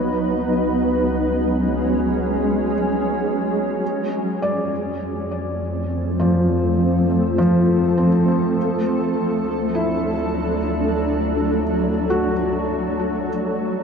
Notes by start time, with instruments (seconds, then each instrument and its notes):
Already playing: synth drone C#2, ambient pad F#3 G#3 B3 D#4 B4, felt piano C#5
0.11 ambient pad C#4
0.98 ambient pad G#4
3.81 synth drone F2, ambient pad F3
4.24 ambient pad C4
4.30 ambient pad A3
4.42 felt piano D5
5.95 ambient pad A4
6.20 felt piano F3
7.38 felt piano F3
7.98 felt piano C4
8.57 synth drone D2, ambient pad F#3
8.83 ambient pad D4
9.74 felt piano E4
12.10 felt piano F#4
13.28 synth drone B1